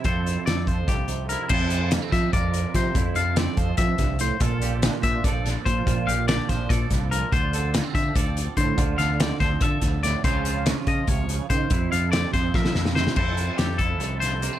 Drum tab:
CC |--------------|x-------------|--------------|--------------|
HH |x-x-x-x-x-x-x-|--x-x-x-x-x-x-|x-x-x-x-x-x-x-|x-x-x-x-x-x-x-|
SD |----o---o-----|----o-o-----o-|----o---o-o---|----o---o-o---|
BD |o-----o-o-----|o-----o-o---o-|o-----o-o-o---|o-----o-o---o-|

CC |--------------|--------------|--------------|--------------|
HH |x-x-x-x-x-x-x-|x-x-x-x-x-x-x-|x-x-x-x-x-x-x-|x-x-x-x-x-x-x-|
SD |----o-o-o-o---|----o---------|--o-o-o---o-o-|----o---------|
BD |o-----o-o-o---|o-----o-o---o-|o-----o-o-o---|o-----o-o---o-|

CC |--------------|x-------------|
HH |x-x-x-x-------|--x-x-x-x-x-x-|
SD |----o-o-oooooo|----o-----o---|
BD |o-----o-o-----|o-----o-------|